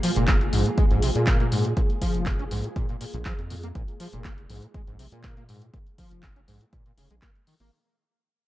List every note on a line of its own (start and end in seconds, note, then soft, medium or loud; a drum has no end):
0.00 0.10 F3 loud
0.00 7.68 A#3 medium
0.00 7.68 F4 medium
0.00 7.70 G#4 medium
0.00 open hi-hat medium
0.16 0.50 F1 medium
0.16 0.26 A#2 medium
0.16 closed hi-hat soft
0.28 0.35 A#3 loud
0.28 kick loud
0.28 clap loud
0.28 closed hi-hat soft
0.41 closed hi-hat soft
0.53 0.64 A#1 loud
0.53 0.67 G#2 medium
0.53 open hi-hat loud
0.66 0.70 A#2 medium
0.66 closed hi-hat soft
0.78 0.85 G#3 medium
0.78 kick loud
0.78 closed hi-hat soft
0.91 1.11 A#1 medium
0.91 1.00 G#2 medium
0.91 closed hi-hat soft
1.02 1.10 C3 medium
1.02 open hi-hat loud
1.15 1.74 A#2 medium
1.15 1.25 A#2 medium
1.15 closed hi-hat soft
1.27 1.38 A#3 medium
1.27 finger snap medium
1.27 kick loud
1.27 clap loud
1.27 closed hi-hat soft
1.40 1.47 A#3 medium
1.40 closed hi-hat soft
1.52 1.67 G#2 medium
1.52 open hi-hat loud
1.65 1.69 A#2 medium
1.65 closed hi-hat soft
1.77 1.81 A#2 loud
1.77 kick loud
1.77 closed hi-hat soft
1.90 closed hi-hat soft
2.02 2.28 F3 loud
2.02 kick medium
2.02 open hi-hat medium
2.14 2.48 F1 medium
2.14 closed hi-hat soft
2.26 2.34 A#2 medium
2.26 kick loud
2.26 clap loud
2.26 closed hi-hat soft
2.39 2.43 C#4 medium
2.39 closed hi-hat soft
2.51 2.62 A#1 loud
2.51 2.66 G#2 loud
2.51 open hi-hat loud
2.64 2.68 A#2 medium
2.64 closed hi-hat soft
2.76 2.87 A#2 medium
2.76 kick loud
2.76 closed hi-hat soft
2.89 2.96 A#2 medium
2.89 closed hi-hat soft
3.01 3.05 A#2 medium
3.01 open hi-hat medium
3.14 3.24 A#1 loud
3.14 3.18 A#2 medium
3.14 closed hi-hat soft
3.25 3.33 F3 loud
3.25 finger snap medium
3.25 kick loud
3.25 clap loud
3.25 closed hi-hat soft
3.39 3.72 F2 medium
3.39 closed hi-hat soft
3.50 3.55 A#2 medium
3.50 open hi-hat medium
3.63 3.67 A#3 medium
3.63 closed hi-hat soft
3.75 3.86 A#1 loud
3.75 3.82 A#2 medium
3.75 kick loud
3.75 closed hi-hat soft
3.88 closed hi-hat soft
4.00 4.07 F3 medium
4.00 open hi-hat medium
4.13 4.46 F1 medium
4.13 4.23 A#2 medium
4.13 closed hi-hat soft
4.24 4.32 A#3 loud
4.24 kick loud
4.24 clap loud
4.24 closed hi-hat soft
4.38 closed hi-hat soft
4.50 4.60 A#1 loud
4.50 4.64 G#2 medium
4.50 open hi-hat medium
4.63 4.66 A#2 medium
4.63 closed hi-hat soft
4.74 4.82 G#3 medium
4.74 kick loud
4.74 closed hi-hat soft
4.87 5.08 A#1 medium
4.87 4.97 G#2 medium
4.87 closed hi-hat soft
4.99 5.06 C3 medium
4.99 open hi-hat medium
5.12 5.70 A#2 medium
5.12 5.22 A#2 medium
5.12 closed hi-hat soft
5.24 5.35 A#3 medium
5.24 finger snap medium
5.24 kick loud
5.24 clap loud
5.24 closed hi-hat soft
5.37 5.43 A#3 medium
5.37 closed hi-hat soft
5.49 5.63 G#2 medium
5.49 open hi-hat medium
5.62 5.66 A#2 medium
5.62 closed hi-hat soft
5.74 5.78 A#2 loud
5.74 kick loud
5.74 closed hi-hat soft
5.86 closed hi-hat soft
5.98 6.25 F3 medium
5.98 kick medium
5.98 open hi-hat medium
6.11 6.45 F1 medium
6.11 closed hi-hat soft
6.23 6.30 A#2 medium
6.23 kick loud
6.23 clap loud
6.23 closed hi-hat soft
6.36 6.40 C#4 medium
6.36 closed hi-hat soft
6.48 6.59 A#1 loud
6.48 6.62 G#2 loud
6.48 open hi-hat medium
6.61 6.65 A#2 medium
6.61 closed hi-hat soft
6.73 6.83 A#2 medium
6.73 kick loud
6.73 closed hi-hat soft
6.86 6.92 A#2 medium
6.86 closed hi-hat soft
6.98 7.08 F1 medium
6.98 7.08 C#3 medium
6.98 open hi-hat medium
7.11 7.20 A#1 medium
7.11 7.14 G#3 medium
7.11 closed hi-hat soft
7.22 7.29 A#3 medium
7.22 finger snap medium
7.22 kick loud
7.22 clap loud
7.22 closed hi-hat soft
7.35 closed hi-hat soft
7.47 7.54 D#3 medium
7.47 open hi-hat medium
7.60 7.70 G#1 medium
7.60 7.70 A#3 medium
7.60 open hi-hat medium